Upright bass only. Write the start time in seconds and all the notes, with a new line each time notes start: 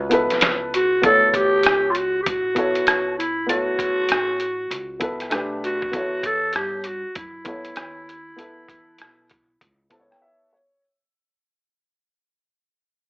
Already playing: C#2
0.32 muted upright bass stroke
0.43 C#2
1.04 D2
1.65 C#2
2.27 A1
2.87 C#2
3.49 D2
4.10 A1
4.70 C#2
5.32 B1
5.93 E2
6.55 G2
7.05 muted upright bass stroke
7.16 F#2
7.77 D#2
8.38 E2
9.00 B1
9.61 C#2